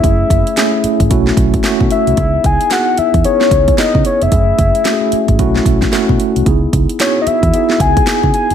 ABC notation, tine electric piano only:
X:1
M:4/4
L:1/8
Q:"Swing 16ths" 1/4=112
K:C#m
V:1 name="Tine electric piano"
[A,CEG]2 [A,CEG]2 [A,CEF]2 [A,CEF]2 | [B,D]2 [B,DEG]2 [B,DEG]2 [B,DEG]2 | [A,CEG]2 [A,CEFG]2 [A,CEF]2 [A,CEF]2 | [B,DEG]2 [B,DEFG]2 [B,DEG]2 [B,DEG]2 |]